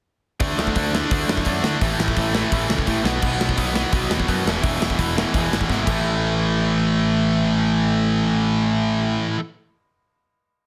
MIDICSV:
0, 0, Header, 1, 4, 480
1, 0, Start_track
1, 0, Tempo, 352941
1, 549, Time_signature, 4, 2, 24, 8
1, 14503, End_track
2, 0, Start_track
2, 0, Title_t, "Overdriven electric guitar"
2, 0, Program_c, 0, 29
2, 543, Note_on_c, 0, 50, 94
2, 552, Note_on_c, 0, 62, 101
2, 553, Note_on_c, 0, 57, 93
2, 1011, Note_off_c, 0, 50, 0
2, 1025, Note_off_c, 0, 57, 0
2, 1027, Note_on_c, 0, 50, 80
2, 1030, Note_on_c, 0, 57, 79
2, 1032, Note_off_c, 0, 62, 0
2, 1048, Note_on_c, 0, 62, 86
2, 1249, Note_off_c, 0, 50, 0
2, 1259, Note_off_c, 0, 57, 0
2, 1263, Note_off_c, 0, 62, 0
2, 1266, Note_on_c, 0, 50, 78
2, 1275, Note_on_c, 0, 57, 85
2, 1280, Note_on_c, 0, 62, 84
2, 1497, Note_off_c, 0, 50, 0
2, 1509, Note_off_c, 0, 57, 0
2, 1513, Note_on_c, 0, 50, 88
2, 1514, Note_off_c, 0, 62, 0
2, 1525, Note_on_c, 0, 57, 96
2, 1531, Note_on_c, 0, 62, 97
2, 1963, Note_off_c, 0, 50, 0
2, 1968, Note_off_c, 0, 57, 0
2, 1979, Note_off_c, 0, 62, 0
2, 1980, Note_on_c, 0, 50, 78
2, 1984, Note_on_c, 0, 57, 98
2, 1995, Note_on_c, 0, 62, 92
2, 2210, Note_off_c, 0, 50, 0
2, 2220, Note_off_c, 0, 57, 0
2, 2225, Note_off_c, 0, 62, 0
2, 2226, Note_on_c, 0, 50, 78
2, 2236, Note_on_c, 0, 57, 83
2, 2241, Note_on_c, 0, 62, 88
2, 2453, Note_off_c, 0, 50, 0
2, 2456, Note_off_c, 0, 57, 0
2, 2461, Note_off_c, 0, 62, 0
2, 2461, Note_on_c, 0, 52, 93
2, 2462, Note_on_c, 0, 45, 94
2, 2472, Note_on_c, 0, 57, 99
2, 2927, Note_off_c, 0, 45, 0
2, 2937, Note_off_c, 0, 52, 0
2, 2943, Note_on_c, 0, 45, 75
2, 2949, Note_off_c, 0, 57, 0
2, 2954, Note_on_c, 0, 52, 82
2, 2966, Note_on_c, 0, 57, 85
2, 3165, Note_off_c, 0, 45, 0
2, 3172, Note_off_c, 0, 52, 0
2, 3177, Note_off_c, 0, 57, 0
2, 3181, Note_on_c, 0, 45, 80
2, 3188, Note_on_c, 0, 52, 82
2, 3193, Note_on_c, 0, 57, 94
2, 3412, Note_off_c, 0, 45, 0
2, 3415, Note_off_c, 0, 52, 0
2, 3423, Note_off_c, 0, 57, 0
2, 3429, Note_on_c, 0, 45, 95
2, 3431, Note_on_c, 0, 52, 89
2, 3439, Note_on_c, 0, 57, 98
2, 3883, Note_off_c, 0, 45, 0
2, 3899, Note_on_c, 0, 45, 83
2, 3900, Note_off_c, 0, 57, 0
2, 3901, Note_off_c, 0, 52, 0
2, 3917, Note_on_c, 0, 52, 99
2, 3917, Note_on_c, 0, 57, 97
2, 4128, Note_off_c, 0, 45, 0
2, 4136, Note_off_c, 0, 57, 0
2, 4137, Note_off_c, 0, 52, 0
2, 4143, Note_on_c, 0, 47, 82
2, 4147, Note_on_c, 0, 54, 98
2, 4152, Note_on_c, 0, 59, 112
2, 4372, Note_off_c, 0, 47, 0
2, 4376, Note_off_c, 0, 54, 0
2, 4389, Note_on_c, 0, 47, 93
2, 4392, Note_on_c, 0, 54, 93
2, 4399, Note_off_c, 0, 59, 0
2, 4404, Note_on_c, 0, 59, 110
2, 4840, Note_off_c, 0, 47, 0
2, 4842, Note_off_c, 0, 54, 0
2, 4857, Note_on_c, 0, 47, 85
2, 4858, Note_on_c, 0, 54, 84
2, 4860, Note_off_c, 0, 59, 0
2, 4865, Note_on_c, 0, 59, 86
2, 5070, Note_off_c, 0, 47, 0
2, 5077, Note_off_c, 0, 54, 0
2, 5086, Note_on_c, 0, 47, 80
2, 5093, Note_on_c, 0, 54, 83
2, 5099, Note_off_c, 0, 59, 0
2, 5104, Note_on_c, 0, 59, 94
2, 5314, Note_off_c, 0, 47, 0
2, 5318, Note_off_c, 0, 54, 0
2, 5322, Note_off_c, 0, 59, 0
2, 5330, Note_on_c, 0, 47, 78
2, 5334, Note_on_c, 0, 54, 102
2, 5339, Note_on_c, 0, 59, 100
2, 5794, Note_off_c, 0, 47, 0
2, 5798, Note_off_c, 0, 54, 0
2, 5807, Note_off_c, 0, 59, 0
2, 5810, Note_on_c, 0, 47, 81
2, 5815, Note_on_c, 0, 54, 84
2, 5823, Note_on_c, 0, 59, 96
2, 6036, Note_off_c, 0, 47, 0
2, 6043, Note_off_c, 0, 54, 0
2, 6044, Note_on_c, 0, 40, 85
2, 6047, Note_off_c, 0, 59, 0
2, 6053, Note_on_c, 0, 47, 91
2, 6062, Note_on_c, 0, 52, 98
2, 6277, Note_off_c, 0, 40, 0
2, 6287, Note_off_c, 0, 47, 0
2, 6293, Note_on_c, 0, 40, 92
2, 6294, Note_off_c, 0, 52, 0
2, 6304, Note_on_c, 0, 47, 93
2, 6310, Note_on_c, 0, 52, 101
2, 6760, Note_off_c, 0, 40, 0
2, 6770, Note_off_c, 0, 47, 0
2, 6777, Note_off_c, 0, 52, 0
2, 6777, Note_on_c, 0, 40, 88
2, 6786, Note_on_c, 0, 47, 85
2, 6793, Note_on_c, 0, 52, 84
2, 6999, Note_off_c, 0, 47, 0
2, 7000, Note_off_c, 0, 40, 0
2, 7011, Note_off_c, 0, 52, 0
2, 7015, Note_on_c, 0, 47, 90
2, 7016, Note_on_c, 0, 40, 82
2, 7027, Note_on_c, 0, 52, 85
2, 7238, Note_off_c, 0, 40, 0
2, 7245, Note_off_c, 0, 47, 0
2, 7248, Note_off_c, 0, 52, 0
2, 7255, Note_on_c, 0, 40, 95
2, 7261, Note_on_c, 0, 47, 82
2, 7264, Note_on_c, 0, 52, 104
2, 7728, Note_off_c, 0, 40, 0
2, 7734, Note_off_c, 0, 47, 0
2, 7737, Note_off_c, 0, 52, 0
2, 7745, Note_on_c, 0, 40, 87
2, 7750, Note_on_c, 0, 47, 88
2, 7753, Note_on_c, 0, 52, 99
2, 7968, Note_off_c, 0, 47, 0
2, 7973, Note_on_c, 0, 45, 84
2, 7980, Note_off_c, 0, 40, 0
2, 7985, Note_off_c, 0, 52, 0
2, 8002, Note_on_c, 0, 52, 90
2, 8028, Note_on_c, 0, 57, 97
2, 12733, Note_off_c, 0, 45, 0
2, 12762, Note_off_c, 0, 52, 0
2, 12788, Note_off_c, 0, 57, 0
2, 14503, End_track
3, 0, Start_track
3, 0, Title_t, "Picked electric bass"
3, 0, Program_c, 1, 34
3, 552, Note_on_c, 1, 38, 86
3, 727, Note_off_c, 1, 38, 0
3, 789, Note_on_c, 1, 38, 89
3, 965, Note_off_c, 1, 38, 0
3, 1027, Note_on_c, 1, 38, 90
3, 1379, Note_off_c, 1, 38, 0
3, 1513, Note_on_c, 1, 38, 96
3, 1688, Note_off_c, 1, 38, 0
3, 1744, Note_on_c, 1, 42, 88
3, 1922, Note_off_c, 1, 42, 0
3, 1986, Note_on_c, 1, 42, 83
3, 2163, Note_off_c, 1, 42, 0
3, 2221, Note_on_c, 1, 50, 79
3, 2400, Note_off_c, 1, 50, 0
3, 2467, Note_on_c, 1, 33, 95
3, 2643, Note_off_c, 1, 33, 0
3, 2699, Note_on_c, 1, 33, 79
3, 2878, Note_off_c, 1, 33, 0
3, 2951, Note_on_c, 1, 33, 86
3, 3301, Note_off_c, 1, 33, 0
3, 3432, Note_on_c, 1, 33, 93
3, 3606, Note_off_c, 1, 33, 0
3, 3662, Note_on_c, 1, 37, 86
3, 3839, Note_off_c, 1, 37, 0
3, 3911, Note_on_c, 1, 33, 82
3, 4085, Note_off_c, 1, 33, 0
3, 4135, Note_on_c, 1, 35, 88
3, 4314, Note_off_c, 1, 35, 0
3, 4390, Note_on_c, 1, 35, 98
3, 4563, Note_off_c, 1, 35, 0
3, 4609, Note_on_c, 1, 35, 86
3, 4790, Note_off_c, 1, 35, 0
3, 4866, Note_on_c, 1, 35, 89
3, 5216, Note_off_c, 1, 35, 0
3, 5337, Note_on_c, 1, 35, 94
3, 5514, Note_off_c, 1, 35, 0
3, 5572, Note_on_c, 1, 39, 88
3, 5751, Note_off_c, 1, 39, 0
3, 5827, Note_on_c, 1, 42, 86
3, 6000, Note_off_c, 1, 42, 0
3, 6060, Note_on_c, 1, 28, 84
3, 6235, Note_off_c, 1, 28, 0
3, 6300, Note_on_c, 1, 28, 95
3, 6475, Note_off_c, 1, 28, 0
3, 6535, Note_on_c, 1, 28, 85
3, 6712, Note_off_c, 1, 28, 0
3, 6782, Note_on_c, 1, 28, 83
3, 7131, Note_off_c, 1, 28, 0
3, 7267, Note_on_c, 1, 28, 96
3, 7439, Note_off_c, 1, 28, 0
3, 7495, Note_on_c, 1, 32, 86
3, 7671, Note_off_c, 1, 32, 0
3, 7746, Note_on_c, 1, 32, 87
3, 7918, Note_off_c, 1, 32, 0
3, 7982, Note_on_c, 1, 33, 92
3, 12447, Note_off_c, 1, 33, 0
3, 14503, End_track
4, 0, Start_track
4, 0, Title_t, "Drums"
4, 545, Note_on_c, 9, 46, 58
4, 550, Note_on_c, 9, 36, 111
4, 681, Note_off_c, 9, 46, 0
4, 686, Note_off_c, 9, 36, 0
4, 800, Note_on_c, 9, 38, 103
4, 912, Note_on_c, 9, 36, 88
4, 936, Note_off_c, 9, 38, 0
4, 1028, Note_on_c, 9, 46, 58
4, 1032, Note_off_c, 9, 36, 0
4, 1032, Note_on_c, 9, 36, 101
4, 1164, Note_off_c, 9, 46, 0
4, 1168, Note_off_c, 9, 36, 0
4, 1288, Note_on_c, 9, 38, 101
4, 1424, Note_off_c, 9, 38, 0
4, 1511, Note_on_c, 9, 46, 64
4, 1512, Note_on_c, 9, 36, 112
4, 1647, Note_off_c, 9, 46, 0
4, 1648, Note_off_c, 9, 36, 0
4, 1760, Note_on_c, 9, 38, 106
4, 1867, Note_on_c, 9, 36, 86
4, 1896, Note_off_c, 9, 38, 0
4, 1971, Note_on_c, 9, 46, 53
4, 1986, Note_off_c, 9, 36, 0
4, 1986, Note_on_c, 9, 36, 93
4, 2107, Note_off_c, 9, 46, 0
4, 2122, Note_off_c, 9, 36, 0
4, 2229, Note_on_c, 9, 38, 105
4, 2365, Note_off_c, 9, 38, 0
4, 2467, Note_on_c, 9, 46, 64
4, 2468, Note_on_c, 9, 36, 109
4, 2603, Note_off_c, 9, 46, 0
4, 2604, Note_off_c, 9, 36, 0
4, 2719, Note_on_c, 9, 38, 100
4, 2827, Note_on_c, 9, 36, 93
4, 2855, Note_off_c, 9, 38, 0
4, 2944, Note_on_c, 9, 46, 59
4, 2948, Note_off_c, 9, 36, 0
4, 2948, Note_on_c, 9, 36, 103
4, 3080, Note_off_c, 9, 46, 0
4, 3084, Note_off_c, 9, 36, 0
4, 3191, Note_on_c, 9, 38, 106
4, 3327, Note_off_c, 9, 38, 0
4, 3427, Note_on_c, 9, 36, 104
4, 3427, Note_on_c, 9, 46, 59
4, 3563, Note_off_c, 9, 36, 0
4, 3563, Note_off_c, 9, 46, 0
4, 3671, Note_on_c, 9, 38, 109
4, 3788, Note_on_c, 9, 36, 87
4, 3807, Note_off_c, 9, 38, 0
4, 3901, Note_on_c, 9, 46, 52
4, 3907, Note_off_c, 9, 36, 0
4, 3907, Note_on_c, 9, 36, 92
4, 4037, Note_off_c, 9, 46, 0
4, 4043, Note_off_c, 9, 36, 0
4, 4153, Note_on_c, 9, 38, 105
4, 4289, Note_off_c, 9, 38, 0
4, 4382, Note_on_c, 9, 49, 96
4, 4387, Note_on_c, 9, 36, 109
4, 4518, Note_off_c, 9, 49, 0
4, 4523, Note_off_c, 9, 36, 0
4, 4636, Note_on_c, 9, 38, 110
4, 4745, Note_on_c, 9, 36, 81
4, 4772, Note_off_c, 9, 38, 0
4, 4862, Note_on_c, 9, 46, 62
4, 4866, Note_off_c, 9, 36, 0
4, 4866, Note_on_c, 9, 36, 102
4, 4998, Note_off_c, 9, 46, 0
4, 5002, Note_off_c, 9, 36, 0
4, 5107, Note_on_c, 9, 38, 101
4, 5243, Note_off_c, 9, 38, 0
4, 5338, Note_on_c, 9, 46, 62
4, 5341, Note_on_c, 9, 36, 109
4, 5474, Note_off_c, 9, 46, 0
4, 5477, Note_off_c, 9, 36, 0
4, 5588, Note_on_c, 9, 38, 102
4, 5706, Note_on_c, 9, 36, 86
4, 5724, Note_off_c, 9, 38, 0
4, 5826, Note_off_c, 9, 36, 0
4, 5826, Note_on_c, 9, 36, 88
4, 5834, Note_on_c, 9, 46, 55
4, 5962, Note_off_c, 9, 36, 0
4, 5970, Note_off_c, 9, 46, 0
4, 6085, Note_on_c, 9, 38, 105
4, 6221, Note_off_c, 9, 38, 0
4, 6303, Note_on_c, 9, 46, 65
4, 6305, Note_on_c, 9, 36, 111
4, 6439, Note_off_c, 9, 46, 0
4, 6441, Note_off_c, 9, 36, 0
4, 6556, Note_on_c, 9, 38, 106
4, 6664, Note_on_c, 9, 36, 88
4, 6692, Note_off_c, 9, 38, 0
4, 6783, Note_off_c, 9, 36, 0
4, 6783, Note_on_c, 9, 36, 94
4, 6785, Note_on_c, 9, 46, 64
4, 6919, Note_off_c, 9, 36, 0
4, 6921, Note_off_c, 9, 46, 0
4, 7047, Note_on_c, 9, 38, 105
4, 7183, Note_off_c, 9, 38, 0
4, 7265, Note_on_c, 9, 36, 112
4, 7270, Note_on_c, 9, 46, 56
4, 7401, Note_off_c, 9, 36, 0
4, 7406, Note_off_c, 9, 46, 0
4, 7523, Note_on_c, 9, 38, 100
4, 7627, Note_on_c, 9, 36, 83
4, 7659, Note_off_c, 9, 38, 0
4, 7745, Note_off_c, 9, 36, 0
4, 7745, Note_on_c, 9, 36, 93
4, 7760, Note_on_c, 9, 38, 57
4, 7881, Note_off_c, 9, 36, 0
4, 7896, Note_off_c, 9, 38, 0
4, 7984, Note_on_c, 9, 36, 96
4, 7985, Note_on_c, 9, 49, 80
4, 8120, Note_off_c, 9, 36, 0
4, 8121, Note_off_c, 9, 49, 0
4, 14503, End_track
0, 0, End_of_file